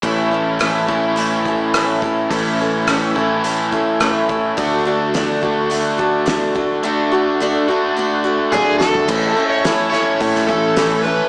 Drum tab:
CC |----------------|----------------|----------------|----------------|
HH |o---o---o---o---|o---o---o---o---|o---o---o---o---|----------------|
SD |----r-------r---|----r-------r---|----o-------o---|--------------o-|
T1 |----------------|----------------|----------------|------------o---|
FT |----------------|----------------|----------------|---------------o|
BD |o-----o---o---o-|o-----o---o---o-|o-----o---o---o-|----------------|

CC |x---------------|
HH |----o---o---o---|
SD |----o-o--o--o---|
T1 |----------------|
FT |----------------|
BD |o-------o-o-----|